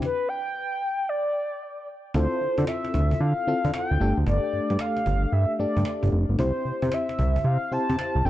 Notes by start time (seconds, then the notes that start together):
0.02 B4, cajon bass, cajon slap
0.29 G5
1.09 D5
2.14 D2 C4 E4 F4 A4 C5, cajon bass
2.32 cajon slap
2.41 D3, cajon slap
2.58 D3, cajon bass, cajon slap
2.67 E5, cajon slap
2.85 cajon slap
2.94 D2, cajon bass
3.11 cajon bass
3.21 D3 F5
3.37 cajon slap
3.47 D3 C4 E4 F4 A4, cajon slap
3.65 D3, cajon bass
3.74 F#5, cajon slap
3.91 D2 G5, cajon slap
4.00 G1 A3 D4 G4 A4
4.17 D2, cajon slap
4.27 G1 D5, cajon bass
4.44 cajon slap
4.53 G2, cajon slap
4.70 G2, cajon slap
4.79 F5, cajon slap
4.97 cajon slap
5.06 G1, cajon bass
5.23 cajon slap
5.32 G2 E5, cajon slap
5.50 cajon slap
5.59 G2 A3 D4 G4 A4 D5, cajon slap
5.77 G2, cajon bass
5.85 cajon slap
6.03 G1, cajon bass
6.12 F1, cajon slap
6.29 G1, cajon slap
6.39 C2 C4 E4 G4 C5, cajon bass
6.56 cajon slap
6.65 C3, cajon slap
6.82 C3, cajon bass, cajon slap
6.92 E5, cajon slap
7.09 cajon slap
7.19 C2, cajon bass
7.36 cajon bass
7.44 C3 F5, cajon slap
7.62 cajon slap
7.71 C3 C4 E4 G4 C5 A5, cajon slap
7.89 C3, cajon bass
7.99 cajon slap
8.15 C2, cajon slap
8.25 F1 C4 D4 G4 A4 G5